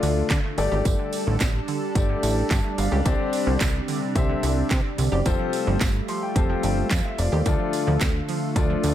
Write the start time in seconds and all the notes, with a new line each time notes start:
Already playing: D3 A3 D4 F4 A4 D5, downlifter
0.03 D2 D3, open hi-hat, tambourine
0.30 D3, kick, snare, clap, closed hi-hat, tambourine
0.44 A3
0.58 G1 D3 G3 A3 D4 G4 A4 D5, open hi-hat, tambourine
0.72 G#1 G4
0.85 G1 D3, kick, closed hi-hat, tambourine
0.99 D3
1.13 open hi-hat, tambourine
1.27 A1 D3
1.40 A1 D3, kick, snare, clap, closed hi-hat, tambourine
1.68 D3, open hi-hat, tambourine
1.95 G1 D3 A3 D4 G4 A4 D5, kick, closed hi-hat, tambourine
2.09 D3
2.23 A1 D3, open hi-hat, tambourine
2.51 G2 D3, kick, snare, clap, closed hi-hat, tambourine
2.64 A3
2.78 G1 D3 F5, open hi-hat, tambourine
2.91 C#2 G4 A4 D5
3.05 C2 C3 D3 C4 D4 G4 C5 D5, kick, closed hi-hat, tambourine
3.19 D3
3.33 open hi-hat, tambourine
3.47 C2 D3
3.60 C2 D3, kick, snare, clap, closed hi-hat, tambourine
3.88 D3, open hi-hat, tambourine
4.15 C2 D3 C4 D4 G4 C5 E5, kick, closed hi-hat, tambourine
4.29 D3
4.43 C2 D3, open hi-hat, tambourine
4.71 C3 D3, kick, snare, clap, closed hi-hat, tambourine
4.84 C4
4.98 C2 D3, open hi-hat, tambourine
5.12 F#1 G4 C5 D5
5.26 F1 F3 G3 A3 C4 F4 G4 A4 C5, kick, closed hi-hat, tambourine
5.39 F3
5.53 open hi-hat, tambourine
5.67 G1 F3
5.81 G1 F3, kick, snare, clap, closed hi-hat, tambourine
6.08 F3 C6, open hi-hat, tambourine
6.22 G5
6.36 F1 F3 C4 F4 G4 A4 C5 A5, kick, closed hi-hat, tambourine
6.49 F3 G5
6.63 G1 F3 G5, open hi-hat, tambourine
6.91 F2 F3 F5, kick, snare, clap, closed hi-hat, tambourine
7.05 C4 E5
7.18 F1 F3 D5, open hi-hat, tambourine
7.32 D#2 G4 A4 C5
7.46 D2 D3 F3 A3 D4 F4 A4 D5, kick, closed hi-hat, tambourine
7.60 F3
7.73 open hi-hat, tambourine
7.87 D2 F3
8.01 D2 F3, kick, snare, clap, closed hi-hat, tambourine
8.28 F3, open hi-hat, tambourine
8.56 D2 F3 A3 D4 F4 A4 D5, kick, closed hi-hat, tambourine
8.70 F3
8.83 D2 F3, open hi-hat, tambourine